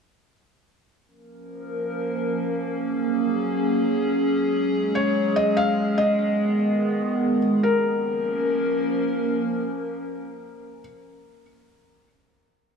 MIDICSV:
0, 0, Header, 1, 3, 480
1, 0, Start_track
1, 0, Tempo, 500000
1, 12254, End_track
2, 0, Start_track
2, 0, Title_t, "Felt piano"
2, 0, Program_c, 0, 0
2, 4753, Note_on_c, 0, 73, 91
2, 5147, Note_on_c, 0, 75, 97
2, 5165, Note_off_c, 0, 73, 0
2, 5345, Note_on_c, 0, 77, 106
2, 5356, Note_off_c, 0, 75, 0
2, 5738, Note_on_c, 0, 75, 93
2, 5757, Note_off_c, 0, 77, 0
2, 7087, Note_off_c, 0, 75, 0
2, 7328, Note_on_c, 0, 70, 83
2, 10356, Note_off_c, 0, 70, 0
2, 12254, End_track
3, 0, Start_track
3, 0, Title_t, "Ambient pad"
3, 0, Program_c, 1, 92
3, 1015, Note_on_c, 1, 61, 74
3, 1016, Note_on_c, 1, 53, 81
3, 1016, Note_on_c, 1, 58, 73
3, 1016, Note_on_c, 1, 70, 90
3, 2578, Note_off_c, 1, 53, 0
3, 2578, Note_off_c, 1, 70, 0
3, 2595, Note_on_c, 1, 54, 78
3, 2595, Note_on_c, 1, 68, 91
3, 4141, Note_off_c, 1, 58, 0
3, 4157, Note_off_c, 1, 54, 0
3, 4172, Note_on_c, 1, 54, 77
3, 4173, Note_on_c, 1, 56, 74
3, 5712, Note_off_c, 1, 61, 0
3, 5735, Note_off_c, 1, 54, 0
3, 5748, Note_on_c, 1, 59, 75
3, 5749, Note_on_c, 1, 51, 78
3, 7291, Note_off_c, 1, 68, 0
3, 7297, Note_off_c, 1, 56, 0
3, 7312, Note_off_c, 1, 51, 0
3, 7312, Note_off_c, 1, 59, 0
3, 7330, Note_on_c, 1, 53, 83
3, 7330, Note_on_c, 1, 58, 74
3, 7330, Note_on_c, 1, 61, 75
3, 7330, Note_on_c, 1, 70, 89
3, 10358, Note_off_c, 1, 53, 0
3, 10358, Note_off_c, 1, 58, 0
3, 10358, Note_off_c, 1, 61, 0
3, 10358, Note_off_c, 1, 70, 0
3, 12254, End_track
0, 0, End_of_file